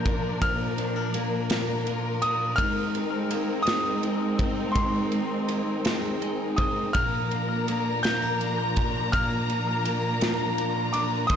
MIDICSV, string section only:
0, 0, Header, 1, 2, 480
1, 0, Start_track
1, 0, Key_signature, -2, "major"
1, 0, Tempo, 725514
1, 279, Time_signature, 6, 3, 24, 8
1, 7516, End_track
2, 0, Start_track
2, 0, Title_t, "String section"
2, 0, Program_c, 0, 48
2, 0, Note_on_c, 0, 53, 67
2, 0, Note_on_c, 0, 58, 60
2, 0, Note_on_c, 0, 62, 64
2, 0, Note_on_c, 0, 70, 82
2, 1683, Note_off_c, 0, 53, 0
2, 1684, Note_off_c, 0, 62, 0
2, 1686, Note_off_c, 0, 58, 0
2, 1708, Note_on_c, 0, 63, 68
2, 1711, Note_on_c, 0, 56, 77
2, 1714, Note_on_c, 0, 60, 73
2, 4569, Note_off_c, 0, 63, 0
2, 4569, Note_off_c, 0, 70, 0
2, 4570, Note_off_c, 0, 56, 0
2, 4572, Note_off_c, 0, 60, 0
2, 4601, Note_on_c, 0, 62, 61
2, 4601, Note_on_c, 0, 70, 79
2, 4602, Note_on_c, 0, 53, 67
2, 4603, Note_on_c, 0, 58, 63
2, 6031, Note_off_c, 0, 70, 0
2, 6041, Note_on_c, 0, 70, 77
2, 7453, Note_off_c, 0, 62, 0
2, 7461, Note_off_c, 0, 70, 0
2, 7481, Note_on_c, 0, 63, 69
2, 7483, Note_on_c, 0, 70, 88
2, 7516, Note_off_c, 0, 53, 0
2, 7516, Note_off_c, 0, 58, 0
2, 7516, Note_off_c, 0, 63, 0
2, 7516, Note_off_c, 0, 70, 0
2, 7516, End_track
0, 0, End_of_file